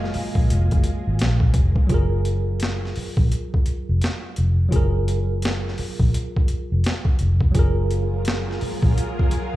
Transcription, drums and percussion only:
0.04 snare soft
0.14 open hi-hat medium
0.35 kick medium
0.50 closed hi-hat medium
0.71 kick medium
0.71 closed hi-hat soft
0.84 closed hi-hat medium
1.19 snare loud
1.19 closed hi-hat medium
1.40 kick medium
1.54 kick medium
1.54 closed hi-hat medium
1.76 kick medium
1.89 kick loud
1.89 closed hi-hat medium
2.25 closed hi-hat medium
2.60 snare loud
2.60 closed hi-hat medium
2.85 snare soft
2.96 open hi-hat soft
3.17 kick medium
3.32 closed hi-hat medium
3.54 kick medium
3.66 closed hi-hat medium
4.02 snare medium
4.02 closed hi-hat medium
4.36 closed hi-hat medium
4.72 kick loud
4.72 closed hi-hat medium
5.08 closed hi-hat medium
5.42 snare loud
5.42 closed hi-hat medium
5.68 snare soft
5.78 open hi-hat soft
6.00 kick medium
6.14 closed hi-hat medium
6.37 kick medium
6.48 closed hi-hat medium
6.84 snare loud
6.84 closed hi-hat medium
7.05 kick medium
7.19 closed hi-hat medium
7.41 kick medium
7.55 kick loud
7.55 closed hi-hat medium
7.91 closed hi-hat medium
8.25 snare loud
8.25 closed hi-hat medium
8.51 snare soft
8.61 open hi-hat soft
8.83 kick medium
8.98 closed hi-hat medium
9.19 kick medium
9.31 closed hi-hat medium

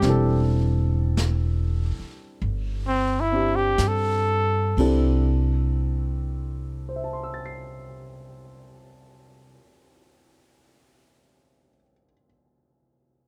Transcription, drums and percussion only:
0.02 brush sweep soft
0.02 snare soft
1.17 brush sweep soft
1.17 snare soft
1.17 hi-hat pedal medium
2.42 brush sweep soft
3.78 brush sweep soft
3.78 snare soft
3.78 hi-hat pedal medium
4.77 kick soft
4.77 crash medium

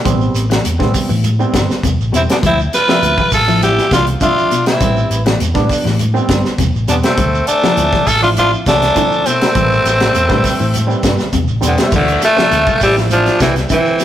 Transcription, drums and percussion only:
0.05 kick loud
0.05 closed hi-hat medium
0.05 shekere medium
0.21 shekere soft
0.35 closed hi-hat medium
0.35 shekere medium
0.51 snare medium
0.51 closed hi-hat medium
0.51 shekere soft
0.65 closed hi-hat medium
0.65 shekere medium
0.80 kick medium
0.80 snare soft
0.80 shekere soft
0.94 kick medium
0.94 open hi-hat medium
0.94 shekere medium
1.09 shekere soft
1.24 closed hi-hat medium
1.24 shekere medium
1.40 shekere soft
1.54 kick medium
1.54 snare medium
1.54 closed hi-hat medium
1.54 shekere medium
1.70 snare soft
1.70 shekere soft
1.83 kick medium
1.83 closed hi-hat medium
1.83 shekere medium
2.01 shekere soft
2.14 closed hi-hat medium
2.14 shekere medium
2.29 snare medium
2.29 closed hi-hat medium
2.29 shekere soft
2.43 kick loud
2.43 closed hi-hat medium
2.43 shekere medium
2.59 shekere soft
2.73 snare soft
2.73 closed hi-hat medium
2.73 shekere medium
2.89 snare medium
2.89 shekere soft
3.02 closed hi-hat medium
3.02 shekere medium
3.18 kick medium
3.18 shekere soft
3.32 kick medium
3.32 open hi-hat medium
3.32 shekere medium
3.48 shekere soft
3.62 snare soft
3.62 closed hi-hat medium
3.62 shekere medium
3.78 snare soft
3.78 shekere soft
3.91 kick medium
3.91 snare medium
3.91 closed hi-hat medium
3.91 shekere medium
4.06 closed hi-hat medium
4.06 shekere soft
4.21 kick medium
4.21 closed hi-hat medium
4.21 shekere medium
4.38 shekere soft
4.51 closed hi-hat medium
4.51 shekere medium
4.66 snare medium
4.66 closed hi-hat medium
4.66 shekere soft
4.81 kick loud
4.81 closed hi-hat medium
4.81 shekere loud
4.97 shekere soft
5.11 closed hi-hat soft
5.11 shekere medium
5.26 snare medium
5.26 closed hi-hat medium
5.26 shekere soft
5.40 closed hi-hat medium
5.40 shekere medium
5.55 kick medium
5.55 snare soft
5.55 shekere soft
5.69 kick medium
5.69 open hi-hat medium
5.69 shekere medium
5.86 snare soft
5.86 shekere soft
5.99 closed hi-hat medium
5.99 shekere loud
6.16 shekere soft
6.29 kick medium
6.29 snare medium
6.29 closed hi-hat medium
6.29 shekere medium
6.45 snare soft
6.45 shekere soft
6.58 kick medium
6.58 closed hi-hat medium
6.58 shekere medium
6.76 shekere soft
6.88 closed hi-hat medium
6.88 shekere medium
7.03 snare medium
7.03 closed hi-hat medium
7.03 shekere soft
7.17 kick loud
7.17 closed hi-hat medium
7.17 shekere medium
7.34 shekere soft
7.47 closed hi-hat medium
7.47 shekere medium
7.63 snare medium
7.63 shekere soft
7.77 closed hi-hat medium
7.77 shekere medium
7.93 kick medium
7.93 snare soft
7.93 shekere soft
8.07 kick medium
8.07 open hi-hat medium
8.07 shekere medium
8.23 shekere soft
8.36 closed hi-hat medium
8.36 shekere medium
8.52 shekere soft
8.66 kick medium
8.66 snare medium
8.66 closed hi-hat medium
8.66 shekere medium
8.82 snare soft
8.82 closed hi-hat medium
8.82 shekere soft
8.96 kick medium
8.96 closed hi-hat medium
8.96 shekere loud
9.12 shekere soft
9.26 closed hi-hat medium
9.26 shekere medium
9.41 snare medium
9.41 closed hi-hat medium
9.41 shekere soft
9.55 kick loud
9.55 closed hi-hat medium
9.55 shekere medium
9.71 shekere soft
9.85 snare soft
9.85 closed hi-hat medium
9.85 shekere medium
10.00 snare medium
10.00 closed hi-hat medium
10.00 shekere soft
10.15 closed hi-hat medium
10.15 shekere medium
10.30 kick medium
10.30 snare soft
10.30 shekere soft
10.44 kick medium
10.44 open hi-hat medium
10.44 shekere medium
10.60 shekere soft
10.73 closed hi-hat medium
10.73 shekere medium
10.90 shekere soft
11.03 kick medium
11.03 snare medium
11.03 closed hi-hat medium
11.03 shekere medium
11.18 snare soft
11.18 shekere soft
11.33 kick medium
11.33 closed hi-hat medium
11.33 shekere loud
11.48 shekere soft
11.62 closed hi-hat medium
11.62 shekere medium
11.78 snare medium
11.78 closed hi-hat medium
11.78 shekere soft
11.92 kick loud
11.92 crash medium
11.92 shekere medium
12.08 closed hi-hat soft
12.08 shekere soft
12.22 snare soft
12.22 closed hi-hat medium
12.22 shekere medium
12.37 snare medium
12.37 shekere soft
12.51 closed hi-hat medium
12.51 shekere medium
12.67 kick medium
12.67 shekere soft
12.81 kick medium
12.81 open hi-hat medium
12.81 shekere medium
12.96 snare soft
12.96 shekere soft
13.10 closed hi-hat medium
13.10 shekere loud
13.26 snare soft
13.26 closed hi-hat soft
13.26 shekere soft
13.40 kick medium
13.40 snare medium
13.40 closed hi-hat medium
13.40 shekere medium
13.56 snare soft
13.56 closed hi-hat soft
13.56 shekere soft
13.69 kick medium
13.69 closed hi-hat medium
13.69 shekere medium
13.86 shekere soft
13.99 snare soft
13.99 closed hi-hat medium
13.99 shekere medium

